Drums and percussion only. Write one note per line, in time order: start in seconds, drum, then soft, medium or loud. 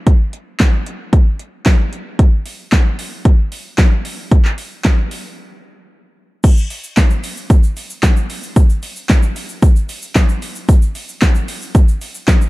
0.07 kick loud
0.07 closed hi-hat medium
0.33 closed hi-hat medium
0.60 kick loud
0.60 snare medium
0.60 clap loud
0.60 closed hi-hat medium
0.86 closed hi-hat medium
1.13 kick loud
1.13 closed hi-hat medium
1.39 closed hi-hat medium
1.66 kick loud
1.66 snare loud
1.66 clap loud
1.66 closed hi-hat medium
1.93 closed hi-hat medium
2.19 kick loud
2.19 closed hi-hat medium
2.46 open hi-hat medium
2.72 kick loud
2.72 snare medium
2.72 clap loud
2.72 closed hi-hat medium
2.99 open hi-hat medium
3.25 kick loud
3.25 closed hi-hat medium
3.52 open hi-hat medium
3.78 kick loud
3.78 snare medium
3.78 clap loud
3.78 closed hi-hat medium
4.05 open hi-hat medium
4.31 kick loud
4.31 closed hi-hat medium
4.45 clap medium
4.58 open hi-hat medium
4.85 kick loud
4.85 snare medium
4.85 clap loud
4.85 closed hi-hat medium
5.11 open hi-hat medium
6.44 kick loud
6.44 closed hi-hat medium
6.44 crash loud
6.44 shaker medium
6.57 shaker soft
6.57 shaker medium
6.70 open hi-hat medium
6.70 shaker medium
6.84 shaker medium
6.97 kick loud
6.97 snare loud
6.97 clap loud
6.97 closed hi-hat medium
6.97 shaker medium
7.10 shaker medium
7.10 shaker soft
7.24 open hi-hat medium
7.24 shaker medium
7.37 shaker soft
7.37 shaker medium
7.50 kick loud
7.50 closed hi-hat medium
7.50 shaker medium
7.63 shaker medium
7.63 shaker soft
7.77 open hi-hat medium
7.77 shaker medium
7.90 shaker medium
8.03 kick loud
8.03 snare loud
8.03 clap loud
8.03 closed hi-hat medium
8.03 shaker medium
8.16 shaker medium
8.30 open hi-hat medium
8.30 shaker medium
8.43 shaker medium
8.43 shaker soft
8.56 kick loud
8.56 closed hi-hat medium
8.56 shaker medium
8.69 shaker soft
8.69 shaker medium
8.83 open hi-hat medium
8.83 shaker medium
8.96 shaker medium
9.09 kick loud
9.09 snare medium
9.09 clap loud
9.09 closed hi-hat medium
9.09 shaker medium
9.23 shaker medium
9.36 open hi-hat medium
9.36 shaker medium
9.49 shaker medium
9.49 shaker soft
9.62 kick loud
9.62 closed hi-hat medium
9.62 shaker medium
9.76 shaker medium
9.76 shaker soft
9.89 open hi-hat medium
9.89 shaker medium
10.02 shaker medium
10.16 kick loud
10.16 snare loud
10.16 clap loud
10.16 closed hi-hat medium
10.16 shaker medium
10.29 shaker medium
10.42 open hi-hat medium
10.42 shaker medium
10.55 shaker soft
10.55 shaker medium
10.69 kick loud
10.69 closed hi-hat medium
10.69 shaker medium
10.82 shaker soft
10.82 shaker medium
10.95 open hi-hat medium
10.95 shaker medium
11.08 shaker medium
11.22 kick loud
11.22 snare medium
11.22 clap loud
11.22 closed hi-hat medium
11.22 shaker medium
11.35 shaker medium
11.48 open hi-hat medium
11.48 shaker medium
11.62 shaker medium
11.62 shaker soft
11.75 kick loud
11.75 closed hi-hat medium
11.75 shaker medium
11.88 shaker medium
11.88 shaker soft
12.01 open hi-hat medium
12.01 shaker medium
12.01 shaker soft
12.15 shaker medium
12.28 kick loud
12.28 snare loud
12.28 clap loud
12.28 closed hi-hat medium
12.28 shaker medium
12.41 shaker medium